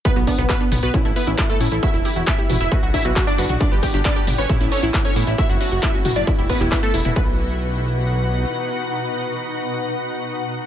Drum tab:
HH |xxoxxxoxxxoxxxox|xxoxxxoxxxoxxxox|xxoxxxoxxxoxxxox|xxoxxxoxxxoxxxox|
SH |xxxxxxxxxxxxxxxx|xxxxxxxxxxxxxxxx|xxxxxxxxxxxxxxxx|xxxxxxxxxxxxxxxx|
CP |----x-------x---|----x-------x---|----x-------x---|----x------xx---|
T2 |------o-o-------|------o--------o|------o-o-------|------o--------o|
BD |o-o-o---o---o---|o---o---o-o-o---|o-o-o---o---o---|o---o---o-o-o---|

HH |----------------|----------------|
SH |----------------|----------------|
CP |----------------|----------------|
T2 |----------------|----------------|
BD |o---------------|----------------|